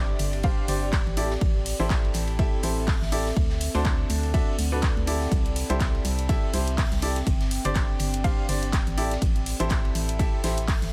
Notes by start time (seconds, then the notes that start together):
Already playing: G1 C4 D4 G4 A4 C5 D5 E5 G5
0.19 G1, open hi-hat, ride
0.24 D5
0.33 ride
0.43 D4 G4 C5 F5, kick, ride
0.68 G1 D4 G4 C5 D5, open hi-hat, ride
0.93 kick, snare, clap, ride
1.06 A1, ride
1.17 E4 G4 A4 D5, open hi-hat, ride
1.25 A4
1.30 snare
1.41 A1, kick, ride
1.66 open hi-hat, ride
1.80 A1 E4 G4 A4 C5
1.90 kick, snare, clap, ride
2.03 E5, ride
2.14 A1, snare, open hi-hat, ride
2.27 ride
2.39 E4 G4 A4 E5, kick, ride
2.63 A1 E4 G4 A4 C5, open hi-hat, ride
2.87 kick, snare, clap, open hi-hat
3.02 A1, snare
3.12 E4 G4 A4 D5, open hi-hat, ride
3.26 snare
3.37 D2, kick, ride
3.50 snare
3.60 open hi-hat, ride
3.75 D2 D4 F#4 A4 C5, ride
3.85 kick, snare, clap, ride
4.10 D2, open hi-hat, ride
4.17 F#5
4.23 D5, ride
4.34 D4 F#4 A4 E5, kick, ride
4.58 D2, open hi-hat, ride
4.72 D4 F#4 A4 B4
4.82 kick, snare, clap, ride
4.97 D2, ride
5.07 E4 G4 A4 D5, open hi-hat, ride
5.21 snare
5.32 C2, kick, closed hi-hat, ride
5.46 closed hi-hat
5.56 open hi-hat, ride
5.70 C2 E4 G4 A4 C5, closed hi-hat
5.80 kick, snare, clap, closed hi-hat, ride
5.95 ride
5.99 E5
6.04 C2, snare, open hi-hat, ride
6.17 G5, closed hi-hat, ride
6.29 E4 G4 A4 E5, kick, closed hi-hat, ride
6.53 C2 E4 G4 A4 C5, open hi-hat, ride
6.68 closed hi-hat
6.78 kick, snare, clap, closed hi-hat, open hi-hat
6.91 C2, snare, closed hi-hat
7.02 E4 G4 A4 D5, open hi-hat, ride
7.16 snare, closed hi-hat
7.27 G1, kick, closed hi-hat, ride
7.41 snare, closed hi-hat
7.45 G4
7.51 open hi-hat, ride
7.63 G1 D4 G4 C5 D5, closed hi-hat, ride
7.74 kick, snare, clap, closed hi-hat, ride
7.99 G1, open hi-hat, ride
8.13 closed hi-hat, ride
8.24 D4 G4 C5 F5, kick, closed hi-hat, ride
8.49 G1 D4 G4 C5 D5, open hi-hat, ride
8.63 closed hi-hat
8.73 kick, snare, clap, closed hi-hat, ride
8.87 A1, closed hi-hat, ride
8.97 E4 G4 A4 D5, open hi-hat, ride
9.11 snare, closed hi-hat
9.19 A1 A4, kick, closed hi-hat, ride
9.36 E5, closed hi-hat
9.46 open hi-hat, ride
9.60 A1 E4 G4 A4 C5, closed hi-hat
9.69 kick, snare, clap, closed hi-hat, ride
9.85 ride
9.95 A1, open hi-hat, ride
10.09 closed hi-hat, ride
10.19 E4 G4 A4 E5, kick, closed hi-hat, ride
10.44 A1 E4 G4 A4 C5, snare, open hi-hat, ride
10.57 closed hi-hat, ride
10.68 kick, snare, clap, closed hi-hat, open hi-hat
10.82 A1, snare, closed hi-hat